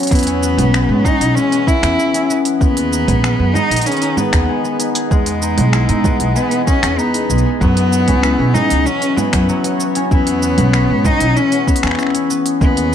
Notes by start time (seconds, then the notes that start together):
Already playing: E3 F#3 B3 C#4 E4 F#4 C#5
0.03 open hi-hat
0.07 B3, open hi-hat
0.11 E2 E4, kick, open hi-hat, cabasa
0.15 open hi-hat
0.19 open hi-hat
0.23 open hi-hat
0.27 C#4, open hi-hat
0.43 B3 G#4, cabasa
0.57 B1, open hi-hat, low conga, cabasa
0.74 G#3, finger snap, cabasa
0.89 G#2 B3
1.04 C#4 D#4, kick, low conga, cabasa
1.21 B1 E4, open hi-hat, cabasa
1.35 G#3 C#4, cabasa
1.52 B3, open hi-hat, cabasa
1.67 C#4 E4, kick, cabasa
1.83 E2, finger snap, open hi-hat, cabasa
1.99 E4, cabasa
2.14 C#4, open hi-hat, cabasa
2.30 B3, cabasa
2.45 open hi-hat, cabasa
2.60 D#2 D#3 G#3 B3, kick, cabasa
2.77 B3, open hi-hat
2.93 D#4, cabasa
3.07 A#1 G#4 D#5, kick, open hi-hat, low conga, cabasa
3.24 G#3, finger snap, cabasa
3.39 F#2 B3
3.54 D#4, low conga, cabasa
3.71 A#1, open hi-hat, cabasa
3.76 open hi-hat
3.81 open hi-hat
3.86 C#4 G#4, open hi-hat, cabasa
3.92 open hi-hat
3.97 open hi-hat
4.02 D#4, open hi-hat, cabasa
4.17 B3, low conga, cabasa
4.33 D#2, finger snap, kick, open hi-hat, cabasa
4.49 G#3
4.64 B3, cabasa
4.80 D#4, open hi-hat, cabasa
4.95 G#4, open hi-hat, cabasa
5.11 E2 E3 G#3, kick, cabasa
5.26 B3, open hi-hat
5.42 D#4, cabasa
5.58 B1, open hi-hat, low conga
5.73 E4, finger snap, cabasa
5.89 G#2 D#4, open hi-hat
6.04 B3, kick, low conga, cabasa
6.20 B1, open hi-hat
6.36 G#3 B3, cabasa
6.51 B3, open hi-hat, cabasa
6.67 C#4 G#4, kick, cabasa
6.83 E2 G#4, finger snap, open hi-hat, cabasa
6.99 B3 D#4, cabasa
7.14 D#4, open hi-hat, cabasa
7.30 B1 G#3, cabasa
7.38 cabasa
7.45 G#4
7.60 F#2 F#3 B3, kick, cabasa
7.77 B3, open hi-hat
7.93 cabasa
8.08 C#2 C#4, kick, open hi-hat, low conga, cabasa
8.23 E4, finger snap, cabasa
8.39 B2 C#4
8.54 B3 D#4 F#4 C#5, low conga, cabasa
8.70 C#2, open hi-hat, cabasa
8.86 F#3 C#4, cabasa
9.02 B3, open hi-hat, cabasa
9.17 B3 C#4, low conga, cabasa
9.33 F#2 E4, finger snap, kick, open hi-hat, cabasa
9.49 F#3, cabasa
9.64 B3, open hi-hat, cabasa
9.80 cabasa
9.95 C#4, open hi-hat, cabasa
10.11 E2 B3 E4, kick, cabasa
10.27 C#4, open hi-hat
10.43 B3, cabasa
10.58 B1, open hi-hat, low conga, cabasa
10.73 G#3, finger snap, cabasa
10.89 G#2 B3
11.05 C#4 D#4, kick, low conga, cabasa
11.20 B1 E4 G#4, open hi-hat, cabasa
11.36 G#3 C#4, cabasa
11.52 B3, open hi-hat, cabasa
11.67 B3, kick, cabasa
11.76 open hi-hat
11.83 E2 C#4, finger snap, cabasa
11.87 finger snap
11.91 finger snap
11.95 E4, finger snap
11.99 finger snap, cabasa
12.03 finger snap
12.07 finger snap
12.10 C#4, finger snap
12.15 open hi-hat, cabasa
12.30 B3, cabasa
12.46 open hi-hat, cabasa
12.61 D#2 D#3 G#3 B3, kick, cabasa
12.77 B3, open hi-hat